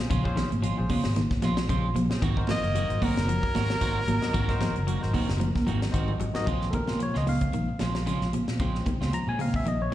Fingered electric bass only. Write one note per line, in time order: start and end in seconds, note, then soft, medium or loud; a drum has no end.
0.11 0.43 A#1 loud
0.52 0.72 G#1 medium
0.79 0.88 A#1 loud
1.05 1.26 G#1 loud
1.44 1.64 A#1 medium
1.70 1.90 A#1 medium
1.96 2.07 A#1 medium
2.11 muted fingered electric bass stroke soft
2.22 2.54 G#1 loud
2.64 2.84 F#1 medium
2.90 2.99 G#1 loud
3.17 3.37 F#1 loud
3.55 3.76 G#1 medium
3.82 4.02 G#1 loud
4.07 4.19 G#1 medium
4.34 4.66 G#1 loud
4.76 4.97 F#1 medium
5.04 5.12 G#1 loud
5.29 5.50 F#1 loud
5.68 5.88 G#1 medium
5.94 6.15 G#1 medium
6.20 6.32 G#1 medium
6.47 6.68 A#1 loud
6.90 7.10 A#2 medium
7.16 7.46 C#2 medium
7.54 7.65 A#1 medium
7.81 8.12 A#1 medium
8.22 8.31 A#1 medium
8.49 8.57 A#2 medium
8.60 8.80 A#1 medium
9.01 9.10 C#2 medium
9.27 9.67 A#2 loud
9.65 9.86 A#1 loud